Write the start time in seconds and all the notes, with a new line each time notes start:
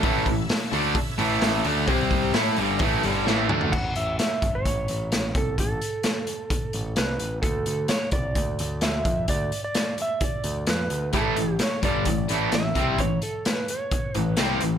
0.01 A1 A2 E3 A3 C#4 E4 A4 E5, kick, open hi-hat
0.26 A1 A2 E3, kick, open hi-hat
0.49 snare, open hi-hat
0.72 D2 D3 A3 D4, open hi-hat
0.95 muted picked electric bass stroke, muted overdriven electric guitar stroke, muted distorted electric guitar stroke, kick, open hi-hat
1.18 A1 A2 E3 A3, open hi-hat
1.42 snare, open hi-hat
1.64 D2 D3 A3 D4, open hi-hat
1.86 C2 C3 G3 C4 G4 C5, kick, open hi-hat
2.11 kick, open hi-hat
2.33 A2 A3 C#4 E4 A4 C#5, snare, open hi-hat
2.56 G1 G2 D3 G3, open hi-hat
2.78 A1 A2 E3 A3, kick, open hi-hat
3.02 G1 G2 D3 G3, open hi-hat
3.24 A1 A2 E3 A3, snare
3.49 D2 D3 A3 D4, mid tom
3.61 floor tom
3.72 A1 F#5, kick, crash
3.96 A1 E5, closed hi-hat
4.19 E5, snare, closed hi-hat
4.42 G1, kick, closed hi-hat
4.55 C#5
4.65 A1, kick, closed hi-hat
4.88 A1, closed hi-hat
5.12 A1, snare, closed hi-hat
5.35 C2 A4, kick, closed hi-hat
5.58 A1 A4, kick, closed hi-hat
5.81 closed hi-hat
6.03 snare, closed hi-hat
6.27 closed hi-hat
6.50 kick, closed hi-hat
6.73 A1, closed hi-hat
6.96 C2 B4, snare, closed hi-hat
7.19 A1, closed hi-hat
7.42 D2 A4, kick, closed hi-hat
7.66 D2, closed hi-hat
7.88 C#5, snare, closed hi-hat
8.11 C2 D5, kick, closed hi-hat
8.35 D2, kick, closed hi-hat
8.59 D2, closed hi-hat
8.81 D2 E5, snare, closed hi-hat
9.05 F2, kick, closed hi-hat
9.28 D2 D5, kick, closed hi-hat
9.52 closed hi-hat
9.64 D5
9.74 snare, closed hi-hat
9.98 E5, closed hi-hat
10.21 D5, kick, closed hi-hat
10.44 D2, closed hi-hat
10.67 F2 B4, snare, closed hi-hat
10.90 D2, closed hi-hat
11.13 A1 A2 E3 A3 A4, kick, closed hi-hat
11.36 A1 A2 E3, closed hi-hat
11.59 C#5, snare, closed hi-hat
11.82 G1 G2 D3 G3 D5, kick, closed hi-hat
12.05 A1 A2 E3, kick, closed hi-hat
12.28 A1 A2 E3 A3, closed hi-hat
12.52 A1 A2 E3 E5, snare, closed hi-hat
12.74 C2 C3 G3 C4, kick, closed hi-hat
12.98 A1 A2 E3 C#5, kick, closed hi-hat
13.22 A4, closed hi-hat
13.45 B4, snare, closed hi-hat
13.68 C#5, closed hi-hat
13.91 kick, closed hi-hat
14.14 A1 A2 E3, closed hi-hat
14.19 B4
14.37 C2 C3 G3 C4, snare, closed hi-hat
14.61 A1 A2 E3, closed hi-hat